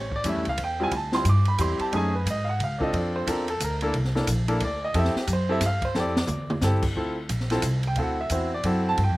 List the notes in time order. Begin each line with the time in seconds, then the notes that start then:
Already playing: A1 C#5
0.12 kick
0.16 D5
0.24 F2 G3 A3 C#4 E4, kick, hi-hat pedal, ride
0.29 E5
0.36 E2
0.45 C#2, ride
0.49 F5
0.58 E2, kick, ride
0.64 G5
0.80 G3 C4 E4 F4 G#5
0.91 D2 G#5, kick, ride
0.97 A5
1.12 G3 C4 E4 F4 C6, snare
1.25 G2, kick, hi-hat pedal, ride
1.29 D6
1.45 B5, ride
1.58 E2 G3 C4 E4 G4 C6, kick, hi-hat pedal, ride
1.79 A5, muted upright bass stroke, ride
1.92 F#2 A3 C#4 D#4 G#4 G#5, kick, ride
2.15 B4
2.26 G#2, kick, hi-hat pedal, ride
2.30 D#5
2.45 F5
2.49 F#5
2.60 C#2, kick, ride
2.64 F5
2.78 C4 D4 F4 A4 D5, kick
2.83 D#5
2.93 F2 D5, kick, ride
3.16 C5
3.27 E2 C4 D4 F4 A4 A#4, kick, hi-hat pedal, ride
3.48 A4, ride
3.60 D2, kick, hi-hat pedal, ride
3.64 A#4
3.81 A#3 D4 E4 A4, ride
3.94 C2, kick, ride
4.05 snare
4.15 A#3 D4 E4 A4, snare
4.27 A#1, kick, hi-hat pedal, ride
4.48 A#3 D4 E4 A4, ride
4.60 D2, kick, ride
4.65 D5
4.85 D#5
4.94 F2 C4 E4 G4 A4, kick, ride
4.99 E5
5.05 snare
5.15 G4, muted upright bass stroke, snare
5.27 F#2, kick, hi-hat pedal, ride
5.33 C5
5.49 C4 E4 G4 A4 E5
5.60 G2, kick, snare, hi-hat pedal, ride
5.66 F5
5.82 C5, kick, ride
5.95 F2 C4 E4 G4 A4, snare
6.00 D5
6.16 snare
6.27 E2, hi-hat pedal, mid tom
6.50 mid tom
6.61 G2 C4 E4 G4 A4, snare, hi-hat pedal
6.82 kick, crash
6.95 D2 C4 E4 F4 A4, kick
7.29 A#1, kick, hi-hat pedal, ride
7.40 snare
7.50 C4 E4 F4 A4, snare, ride
7.62 C2, kick, hi-hat pedal, ride
7.83 ride
7.87 G5
7.96 D2 C4 E4 F#4 A4 F5, kick, ride
8.02 F#5
8.21 E5
8.30 E2 C4 E4 F#4 C5, kick, hi-hat pedal, ride
8.54 D5
8.63 F#2 C4 E4 F#4 A4, kick, ride
8.89 A5
8.98 G2, kick, ride
9.04 G5
9.09 F2